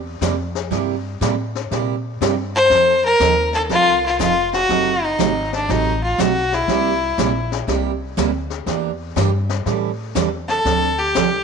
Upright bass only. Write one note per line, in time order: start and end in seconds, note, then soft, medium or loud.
0.00 0.20 E2 medium
0.21 0.70 F2 medium
0.71 1.19 G2 medium
1.21 1.69 A2 medium
1.71 2.19 A#2 medium
2.21 2.69 G2 medium
2.70 3.18 F2 medium
3.20 3.68 D#2 medium
3.69 4.18 C2 medium
4.19 4.68 F1 medium
4.69 5.18 F#1 medium
5.19 5.67 G#1 medium
5.69 6.17 A1 medium
6.18 6.67 B1 medium
6.68 7.16 C2 medium
7.18 7.66 A#1 medium
7.67 8.16 C2 medium
8.17 8.66 D2 medium
8.66 9.15 E2 medium
9.16 9.65 G2 medium
9.66 10.14 A2 medium
10.15 10.64 E2 medium
10.65 11.13 D2 medium
11.15 11.44 C2 medium